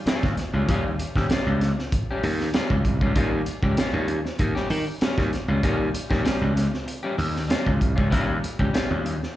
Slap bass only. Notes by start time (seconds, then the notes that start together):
0.06 muted slap bass stroke
0.23 D#2
0.53 C#2
0.69 D#2
1.16 D#2
1.31 muted slap bass stroke
1.46 C#2
2.23 D#2
2.70 C#2
2.85 C2
3.01 C#2
3.16 D#2
3.63 C#2
3.77 muted slap bass stroke
3.93 D#2
4.40 D#2
4.70 D#3
5.02 muted slap bass stroke
5.18 D#2
5.48 C#2
5.63 D#2
6.10 D#2
6.25 muted slap bass stroke
6.41 C#2
7.18 D#2
7.66 C#2
7.81 C2
7.98 C#2
8.12 D#2
8.59 C#2
8.74 muted slap bass stroke
8.91 D#2